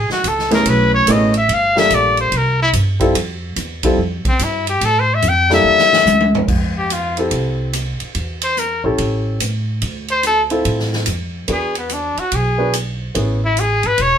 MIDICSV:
0, 0, Header, 1, 6, 480
1, 0, Start_track
1, 0, Key_signature, -1, "major"
1, 0, Tempo, 416378
1, 1717, Time_signature, 4, 2, 24, 8
1, 16349, End_track
2, 0, Start_track
2, 0, Title_t, "Trumpet"
2, 0, Program_c, 0, 56
2, 0, Note_on_c, 0, 68, 81
2, 129, Note_off_c, 0, 68, 0
2, 136, Note_on_c, 0, 66, 78
2, 320, Note_on_c, 0, 69, 75
2, 338, Note_off_c, 0, 66, 0
2, 607, Note_off_c, 0, 69, 0
2, 614, Note_on_c, 0, 70, 86
2, 793, Note_on_c, 0, 71, 78
2, 810, Note_off_c, 0, 70, 0
2, 1080, Note_off_c, 0, 71, 0
2, 1087, Note_on_c, 0, 73, 96
2, 1281, Note_on_c, 0, 75, 75
2, 1298, Note_off_c, 0, 73, 0
2, 1570, Note_off_c, 0, 75, 0
2, 1585, Note_on_c, 0, 76, 84
2, 1770, Note_on_c, 0, 77, 87
2, 1788, Note_off_c, 0, 76, 0
2, 2057, Note_on_c, 0, 76, 97
2, 2074, Note_off_c, 0, 77, 0
2, 2242, Note_on_c, 0, 74, 86
2, 2259, Note_off_c, 0, 76, 0
2, 2530, Note_off_c, 0, 74, 0
2, 2542, Note_on_c, 0, 72, 82
2, 2732, Note_on_c, 0, 70, 80
2, 2750, Note_off_c, 0, 72, 0
2, 3015, Note_off_c, 0, 70, 0
2, 3023, Note_on_c, 0, 64, 94
2, 3114, Note_off_c, 0, 64, 0
2, 4936, Note_on_c, 0, 60, 83
2, 5114, Note_on_c, 0, 64, 74
2, 5131, Note_off_c, 0, 60, 0
2, 5402, Note_off_c, 0, 64, 0
2, 5408, Note_on_c, 0, 67, 80
2, 5591, Note_on_c, 0, 69, 90
2, 5608, Note_off_c, 0, 67, 0
2, 5759, Note_on_c, 0, 72, 81
2, 5777, Note_off_c, 0, 69, 0
2, 5931, Note_on_c, 0, 76, 83
2, 5949, Note_off_c, 0, 72, 0
2, 6093, Note_on_c, 0, 79, 97
2, 6110, Note_off_c, 0, 76, 0
2, 6376, Note_off_c, 0, 79, 0
2, 6385, Note_on_c, 0, 76, 111
2, 7365, Note_off_c, 0, 76, 0
2, 7811, Note_on_c, 0, 67, 66
2, 7988, Note_on_c, 0, 65, 60
2, 8005, Note_off_c, 0, 67, 0
2, 8285, Note_off_c, 0, 65, 0
2, 9728, Note_on_c, 0, 72, 88
2, 9904, Note_on_c, 0, 70, 74
2, 9921, Note_off_c, 0, 72, 0
2, 10205, Note_off_c, 0, 70, 0
2, 11653, Note_on_c, 0, 72, 89
2, 11802, Note_off_c, 0, 72, 0
2, 11837, Note_on_c, 0, 69, 81
2, 12014, Note_off_c, 0, 69, 0
2, 13282, Note_on_c, 0, 68, 72
2, 13554, Note_off_c, 0, 68, 0
2, 13578, Note_on_c, 0, 59, 57
2, 13754, Note_on_c, 0, 62, 69
2, 13772, Note_off_c, 0, 59, 0
2, 14055, Note_on_c, 0, 66, 76
2, 14073, Note_off_c, 0, 62, 0
2, 14240, Note_on_c, 0, 68, 76
2, 14257, Note_off_c, 0, 66, 0
2, 14702, Note_off_c, 0, 68, 0
2, 15506, Note_on_c, 0, 64, 83
2, 15677, Note_on_c, 0, 68, 81
2, 15694, Note_off_c, 0, 64, 0
2, 15985, Note_on_c, 0, 71, 82
2, 16002, Note_off_c, 0, 68, 0
2, 16153, Note_on_c, 0, 73, 92
2, 16171, Note_off_c, 0, 71, 0
2, 16349, Note_off_c, 0, 73, 0
2, 16349, End_track
3, 0, Start_track
3, 0, Title_t, "Grand piano"
3, 0, Program_c, 1, 0
3, 584, Note_on_c, 1, 57, 65
3, 584, Note_on_c, 1, 59, 62
3, 596, Note_on_c, 1, 61, 55
3, 599, Note_on_c, 1, 64, 64
3, 600, Note_on_c, 1, 68, 71
3, 1201, Note_off_c, 1, 57, 0
3, 1201, Note_off_c, 1, 59, 0
3, 1207, Note_off_c, 1, 61, 0
3, 1208, Note_off_c, 1, 64, 0
3, 1209, Note_off_c, 1, 68, 0
3, 1243, Note_on_c, 1, 57, 69
3, 1246, Note_on_c, 1, 59, 64
3, 1250, Note_on_c, 1, 61, 59
3, 1260, Note_on_c, 1, 64, 57
3, 1264, Note_on_c, 1, 68, 71
3, 1520, Note_off_c, 1, 57, 0
3, 1521, Note_off_c, 1, 59, 0
3, 1523, Note_off_c, 1, 61, 0
3, 1528, Note_off_c, 1, 64, 0
3, 1530, Note_off_c, 1, 68, 0
3, 2023, Note_on_c, 1, 55, 55
3, 2028, Note_on_c, 1, 58, 52
3, 2032, Note_on_c, 1, 62, 53
3, 2036, Note_on_c, 1, 65, 48
3, 2041, Note_on_c, 1, 69, 65
3, 2640, Note_off_c, 1, 55, 0
3, 2643, Note_off_c, 1, 58, 0
3, 2645, Note_off_c, 1, 62, 0
3, 2646, Note_off_c, 1, 65, 0
3, 2649, Note_off_c, 1, 69, 0
3, 3454, Note_on_c, 1, 55, 69
3, 3455, Note_on_c, 1, 60, 59
3, 3467, Note_on_c, 1, 64, 67
3, 3468, Note_on_c, 1, 65, 65
3, 3477, Note_on_c, 1, 69, 79
3, 3613, Note_off_c, 1, 55, 0
3, 3613, Note_off_c, 1, 60, 0
3, 3619, Note_off_c, 1, 64, 0
3, 3620, Note_off_c, 1, 65, 0
3, 3624, Note_off_c, 1, 69, 0
3, 4424, Note_on_c, 1, 55, 68
3, 4428, Note_on_c, 1, 60, 59
3, 4430, Note_on_c, 1, 64, 59
3, 4433, Note_on_c, 1, 65, 59
3, 4442, Note_on_c, 1, 69, 73
3, 4577, Note_off_c, 1, 55, 0
3, 4579, Note_off_c, 1, 60, 0
3, 4580, Note_off_c, 1, 64, 0
3, 4582, Note_off_c, 1, 65, 0
3, 4586, Note_off_c, 1, 69, 0
3, 6339, Note_on_c, 1, 55, 66
3, 6342, Note_on_c, 1, 62, 64
3, 6346, Note_on_c, 1, 58, 63
3, 6349, Note_on_c, 1, 64, 64
3, 6353, Note_on_c, 1, 69, 75
3, 6959, Note_off_c, 1, 55, 0
3, 6960, Note_off_c, 1, 62, 0
3, 6962, Note_off_c, 1, 58, 0
3, 6964, Note_off_c, 1, 64, 0
3, 6966, Note_off_c, 1, 69, 0
3, 8271, Note_on_c, 1, 60, 57
3, 8280, Note_on_c, 1, 64, 49
3, 8287, Note_on_c, 1, 67, 46
3, 8290, Note_on_c, 1, 69, 64
3, 8887, Note_off_c, 1, 60, 0
3, 8891, Note_off_c, 1, 64, 0
3, 8895, Note_off_c, 1, 67, 0
3, 8896, Note_off_c, 1, 69, 0
3, 10190, Note_on_c, 1, 61, 59
3, 10198, Note_on_c, 1, 64, 53
3, 10201, Note_on_c, 1, 67, 48
3, 10209, Note_on_c, 1, 69, 67
3, 10808, Note_off_c, 1, 61, 0
3, 10812, Note_off_c, 1, 64, 0
3, 10813, Note_off_c, 1, 67, 0
3, 10817, Note_off_c, 1, 69, 0
3, 12108, Note_on_c, 1, 60, 62
3, 12118, Note_on_c, 1, 64, 60
3, 12118, Note_on_c, 1, 65, 55
3, 12130, Note_on_c, 1, 69, 71
3, 12727, Note_off_c, 1, 60, 0
3, 12732, Note_off_c, 1, 64, 0
3, 12732, Note_off_c, 1, 65, 0
3, 12738, Note_off_c, 1, 69, 0
3, 13232, Note_on_c, 1, 59, 51
3, 13237, Note_on_c, 1, 62, 43
3, 13246, Note_on_c, 1, 66, 46
3, 13252, Note_on_c, 1, 68, 53
3, 13518, Note_off_c, 1, 59, 0
3, 13521, Note_off_c, 1, 62, 0
3, 13525, Note_off_c, 1, 66, 0
3, 13529, Note_off_c, 1, 68, 0
3, 14505, Note_on_c, 1, 59, 58
3, 14509, Note_on_c, 1, 62, 58
3, 14519, Note_on_c, 1, 66, 56
3, 14521, Note_on_c, 1, 71, 67
3, 14662, Note_off_c, 1, 59, 0
3, 14663, Note_off_c, 1, 62, 0
3, 14669, Note_off_c, 1, 66, 0
3, 14670, Note_off_c, 1, 71, 0
3, 15155, Note_on_c, 1, 59, 53
3, 15158, Note_on_c, 1, 61, 46
3, 15163, Note_on_c, 1, 64, 46
3, 15170, Note_on_c, 1, 68, 52
3, 15439, Note_off_c, 1, 59, 0
3, 15440, Note_off_c, 1, 61, 0
3, 15443, Note_off_c, 1, 64, 0
3, 15446, Note_off_c, 1, 68, 0
3, 16349, End_track
4, 0, Start_track
4, 0, Title_t, "Upright bass"
4, 0, Program_c, 2, 32
4, 276, Note_on_c, 2, 37, 78
4, 742, Note_off_c, 2, 37, 0
4, 756, Note_on_c, 2, 35, 73
4, 1222, Note_off_c, 2, 35, 0
4, 1231, Note_on_c, 2, 33, 80
4, 1699, Note_off_c, 2, 33, 0
4, 1713, Note_on_c, 2, 31, 78
4, 2180, Note_off_c, 2, 31, 0
4, 2197, Note_on_c, 2, 34, 73
4, 2662, Note_off_c, 2, 34, 0
4, 2672, Note_on_c, 2, 36, 77
4, 3139, Note_off_c, 2, 36, 0
4, 3152, Note_on_c, 2, 43, 82
4, 3619, Note_off_c, 2, 43, 0
4, 3628, Note_on_c, 2, 41, 73
4, 4097, Note_off_c, 2, 41, 0
4, 4106, Note_on_c, 2, 40, 79
4, 4576, Note_off_c, 2, 40, 0
4, 4587, Note_on_c, 2, 41, 79
4, 4881, Note_off_c, 2, 41, 0
4, 5063, Note_on_c, 2, 43, 81
4, 5535, Note_off_c, 2, 43, 0
4, 5545, Note_on_c, 2, 45, 76
4, 6016, Note_off_c, 2, 45, 0
4, 6025, Note_on_c, 2, 41, 86
4, 6496, Note_off_c, 2, 41, 0
4, 6504, Note_on_c, 2, 40, 83
4, 6976, Note_off_c, 2, 40, 0
4, 6981, Note_on_c, 2, 38, 90
4, 7455, Note_off_c, 2, 38, 0
4, 7469, Note_on_c, 2, 41, 68
4, 8389, Note_off_c, 2, 41, 0
4, 8429, Note_on_c, 2, 36, 78
4, 9181, Note_off_c, 2, 36, 0
4, 9393, Note_on_c, 2, 40, 68
4, 10144, Note_off_c, 2, 40, 0
4, 10189, Note_on_c, 2, 34, 62
4, 10348, Note_off_c, 2, 34, 0
4, 10360, Note_on_c, 2, 33, 78
4, 10808, Note_off_c, 2, 33, 0
4, 10838, Note_on_c, 2, 45, 70
4, 11288, Note_off_c, 2, 45, 0
4, 11318, Note_on_c, 2, 38, 74
4, 12236, Note_off_c, 2, 38, 0
4, 12280, Note_on_c, 2, 45, 82
4, 12729, Note_off_c, 2, 45, 0
4, 12761, Note_on_c, 2, 41, 60
4, 13209, Note_off_c, 2, 41, 0
4, 13238, Note_on_c, 2, 40, 72
4, 13986, Note_off_c, 2, 40, 0
4, 14201, Note_on_c, 2, 35, 72
4, 15115, Note_off_c, 2, 35, 0
4, 15160, Note_on_c, 2, 33, 77
4, 15906, Note_off_c, 2, 33, 0
4, 15952, Note_on_c, 2, 32, 59
4, 16106, Note_off_c, 2, 32, 0
4, 16113, Note_on_c, 2, 28, 66
4, 16349, Note_off_c, 2, 28, 0
4, 16349, End_track
5, 0, Start_track
5, 0, Title_t, "Muted upright bass strokes"
5, 99, Note_on_c, 9, 29, 35
5, 214, Note_off_c, 9, 29, 0
5, 4898, Note_on_c, 9, 29, 34
5, 5013, Note_off_c, 9, 29, 0
5, 9233, Note_on_c, 9, 29, 30
5, 9348, Note_off_c, 9, 29, 0
5, 14036, Note_on_c, 9, 29, 37
5, 14151, Note_off_c, 9, 29, 0
5, 16349, End_track
6, 0, Start_track
6, 0, Title_t, "Drums"
6, 110, Note_on_c, 9, 38, 37
6, 225, Note_off_c, 9, 38, 0
6, 277, Note_on_c, 9, 36, 18
6, 277, Note_on_c, 9, 44, 38
6, 277, Note_on_c, 9, 51, 55
6, 393, Note_off_c, 9, 36, 0
6, 393, Note_off_c, 9, 44, 0
6, 393, Note_off_c, 9, 51, 0
6, 445, Note_on_c, 9, 38, 29
6, 560, Note_off_c, 9, 38, 0
6, 591, Note_on_c, 9, 51, 38
6, 602, Note_on_c, 9, 38, 38
6, 706, Note_off_c, 9, 51, 0
6, 717, Note_off_c, 9, 38, 0
6, 756, Note_on_c, 9, 51, 62
6, 757, Note_on_c, 9, 36, 25
6, 871, Note_off_c, 9, 51, 0
6, 873, Note_off_c, 9, 36, 0
6, 1232, Note_on_c, 9, 44, 53
6, 1232, Note_on_c, 9, 51, 67
6, 1236, Note_on_c, 9, 36, 20
6, 1348, Note_off_c, 9, 44, 0
6, 1348, Note_off_c, 9, 51, 0
6, 1351, Note_off_c, 9, 36, 0
6, 1542, Note_on_c, 9, 51, 44
6, 1657, Note_off_c, 9, 51, 0
6, 1717, Note_on_c, 9, 36, 26
6, 1718, Note_on_c, 9, 51, 61
6, 1832, Note_off_c, 9, 36, 0
6, 1833, Note_off_c, 9, 51, 0
6, 2035, Note_on_c, 9, 38, 60
6, 2151, Note_off_c, 9, 38, 0
6, 2194, Note_on_c, 9, 44, 46
6, 2194, Note_on_c, 9, 51, 55
6, 2196, Note_on_c, 9, 36, 18
6, 2310, Note_off_c, 9, 44, 0
6, 2310, Note_off_c, 9, 51, 0
6, 2311, Note_off_c, 9, 36, 0
6, 2504, Note_on_c, 9, 51, 36
6, 2619, Note_off_c, 9, 51, 0
6, 2672, Note_on_c, 9, 51, 59
6, 2675, Note_on_c, 9, 36, 19
6, 2788, Note_off_c, 9, 51, 0
6, 2790, Note_off_c, 9, 36, 0
6, 3151, Note_on_c, 9, 44, 51
6, 3151, Note_on_c, 9, 51, 67
6, 3152, Note_on_c, 9, 36, 21
6, 3267, Note_off_c, 9, 44, 0
6, 3267, Note_off_c, 9, 51, 0
6, 3268, Note_off_c, 9, 36, 0
6, 3463, Note_on_c, 9, 36, 48
6, 3464, Note_on_c, 9, 51, 44
6, 3578, Note_off_c, 9, 36, 0
6, 3579, Note_off_c, 9, 51, 0
6, 3631, Note_on_c, 9, 36, 21
6, 3633, Note_on_c, 9, 51, 64
6, 3746, Note_off_c, 9, 36, 0
6, 3748, Note_off_c, 9, 51, 0
6, 4107, Note_on_c, 9, 44, 46
6, 4107, Note_on_c, 9, 51, 56
6, 4109, Note_on_c, 9, 36, 19
6, 4222, Note_off_c, 9, 44, 0
6, 4222, Note_off_c, 9, 51, 0
6, 4224, Note_off_c, 9, 36, 0
6, 4416, Note_on_c, 9, 51, 60
6, 4420, Note_on_c, 9, 36, 56
6, 4531, Note_off_c, 9, 51, 0
6, 4535, Note_off_c, 9, 36, 0
6, 4589, Note_on_c, 9, 36, 25
6, 4704, Note_off_c, 9, 36, 0
6, 4899, Note_on_c, 9, 36, 70
6, 4899, Note_on_c, 9, 51, 46
6, 5015, Note_off_c, 9, 36, 0
6, 5015, Note_off_c, 9, 51, 0
6, 5065, Note_on_c, 9, 44, 52
6, 5065, Note_on_c, 9, 51, 63
6, 5068, Note_on_c, 9, 36, 25
6, 5180, Note_off_c, 9, 44, 0
6, 5180, Note_off_c, 9, 51, 0
6, 5183, Note_off_c, 9, 36, 0
6, 5383, Note_on_c, 9, 51, 47
6, 5498, Note_off_c, 9, 51, 0
6, 5548, Note_on_c, 9, 36, 22
6, 5548, Note_on_c, 9, 51, 61
6, 5663, Note_off_c, 9, 36, 0
6, 5663, Note_off_c, 9, 51, 0
6, 6021, Note_on_c, 9, 44, 45
6, 6021, Note_on_c, 9, 51, 52
6, 6028, Note_on_c, 9, 36, 19
6, 6136, Note_off_c, 9, 44, 0
6, 6136, Note_off_c, 9, 51, 0
6, 6144, Note_off_c, 9, 36, 0
6, 6340, Note_on_c, 9, 38, 44
6, 6455, Note_off_c, 9, 38, 0
6, 6666, Note_on_c, 9, 38, 55
6, 6781, Note_off_c, 9, 38, 0
6, 6832, Note_on_c, 9, 38, 71
6, 6947, Note_off_c, 9, 38, 0
6, 6991, Note_on_c, 9, 44, 60
6, 6995, Note_on_c, 9, 48, 60
6, 7106, Note_off_c, 9, 44, 0
6, 7110, Note_off_c, 9, 48, 0
6, 7153, Note_on_c, 9, 48, 72
6, 7268, Note_off_c, 9, 48, 0
6, 7317, Note_on_c, 9, 43, 85
6, 7432, Note_off_c, 9, 43, 0
6, 7473, Note_on_c, 9, 36, 69
6, 7473, Note_on_c, 9, 49, 64
6, 7588, Note_off_c, 9, 36, 0
6, 7588, Note_off_c, 9, 49, 0
6, 7956, Note_on_c, 9, 44, 39
6, 7956, Note_on_c, 9, 51, 54
6, 8071, Note_off_c, 9, 44, 0
6, 8071, Note_off_c, 9, 51, 0
6, 8264, Note_on_c, 9, 51, 38
6, 8379, Note_off_c, 9, 51, 0
6, 8426, Note_on_c, 9, 51, 58
6, 8432, Note_on_c, 9, 36, 31
6, 8541, Note_off_c, 9, 51, 0
6, 8548, Note_off_c, 9, 36, 0
6, 8914, Note_on_c, 9, 44, 42
6, 8914, Note_on_c, 9, 51, 66
6, 9029, Note_off_c, 9, 44, 0
6, 9029, Note_off_c, 9, 51, 0
6, 9222, Note_on_c, 9, 51, 41
6, 9337, Note_off_c, 9, 51, 0
6, 9391, Note_on_c, 9, 51, 50
6, 9396, Note_on_c, 9, 36, 29
6, 9506, Note_off_c, 9, 51, 0
6, 9512, Note_off_c, 9, 36, 0
6, 9701, Note_on_c, 9, 51, 60
6, 9816, Note_off_c, 9, 51, 0
6, 9874, Note_on_c, 9, 44, 47
6, 9989, Note_off_c, 9, 44, 0
6, 10355, Note_on_c, 9, 51, 54
6, 10361, Note_on_c, 9, 36, 33
6, 10470, Note_off_c, 9, 51, 0
6, 10476, Note_off_c, 9, 36, 0
6, 10839, Note_on_c, 9, 44, 48
6, 10839, Note_on_c, 9, 51, 62
6, 10954, Note_off_c, 9, 44, 0
6, 10954, Note_off_c, 9, 51, 0
6, 11316, Note_on_c, 9, 51, 54
6, 11321, Note_on_c, 9, 36, 30
6, 11431, Note_off_c, 9, 51, 0
6, 11437, Note_off_c, 9, 36, 0
6, 11624, Note_on_c, 9, 51, 40
6, 11740, Note_off_c, 9, 51, 0
6, 11795, Note_on_c, 9, 44, 47
6, 11795, Note_on_c, 9, 51, 56
6, 11910, Note_off_c, 9, 44, 0
6, 11910, Note_off_c, 9, 51, 0
6, 12105, Note_on_c, 9, 51, 38
6, 12220, Note_off_c, 9, 51, 0
6, 12277, Note_on_c, 9, 51, 50
6, 12281, Note_on_c, 9, 36, 31
6, 12392, Note_off_c, 9, 51, 0
6, 12396, Note_off_c, 9, 36, 0
6, 12442, Note_on_c, 9, 38, 30
6, 12557, Note_off_c, 9, 38, 0
6, 12596, Note_on_c, 9, 38, 39
6, 12711, Note_off_c, 9, 38, 0
6, 12747, Note_on_c, 9, 44, 58
6, 12747, Note_on_c, 9, 51, 65
6, 12862, Note_off_c, 9, 44, 0
6, 12862, Note_off_c, 9, 51, 0
6, 13231, Note_on_c, 9, 51, 53
6, 13240, Note_on_c, 9, 36, 32
6, 13346, Note_off_c, 9, 51, 0
6, 13356, Note_off_c, 9, 36, 0
6, 13547, Note_on_c, 9, 51, 42
6, 13663, Note_off_c, 9, 51, 0
6, 13712, Note_on_c, 9, 44, 43
6, 13712, Note_on_c, 9, 51, 46
6, 13827, Note_off_c, 9, 44, 0
6, 13827, Note_off_c, 9, 51, 0
6, 14034, Note_on_c, 9, 51, 38
6, 14149, Note_off_c, 9, 51, 0
6, 14197, Note_on_c, 9, 51, 55
6, 14204, Note_on_c, 9, 36, 32
6, 14313, Note_off_c, 9, 51, 0
6, 14319, Note_off_c, 9, 36, 0
6, 14680, Note_on_c, 9, 44, 52
6, 14680, Note_on_c, 9, 51, 62
6, 14795, Note_off_c, 9, 44, 0
6, 14795, Note_off_c, 9, 51, 0
6, 15159, Note_on_c, 9, 51, 52
6, 15163, Note_on_c, 9, 36, 28
6, 15275, Note_off_c, 9, 51, 0
6, 15278, Note_off_c, 9, 36, 0
6, 15640, Note_on_c, 9, 44, 39
6, 15640, Note_on_c, 9, 51, 44
6, 15755, Note_off_c, 9, 44, 0
6, 15755, Note_off_c, 9, 51, 0
6, 15943, Note_on_c, 9, 51, 36
6, 16059, Note_off_c, 9, 51, 0
6, 16112, Note_on_c, 9, 51, 58
6, 16117, Note_on_c, 9, 36, 33
6, 16228, Note_off_c, 9, 51, 0
6, 16232, Note_off_c, 9, 36, 0
6, 16349, End_track
0, 0, End_of_file